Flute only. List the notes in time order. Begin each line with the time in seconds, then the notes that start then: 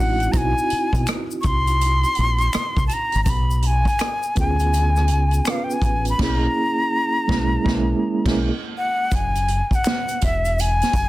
Already playing: F#5
0.32 A#5
0.37 G#5
1.41 C#6
1.47 C6
2.87 A5
2.94 A#5
3.24 A#5
3.30 B5
3.66 G#5
4.40 G#5
5.50 F5
5.64 G5
5.73 G#5
6.10 B5
6.23 A#5
8.78 F#5
9.15 G#5
9.75 F#5
10.24 E5
10.60 G#5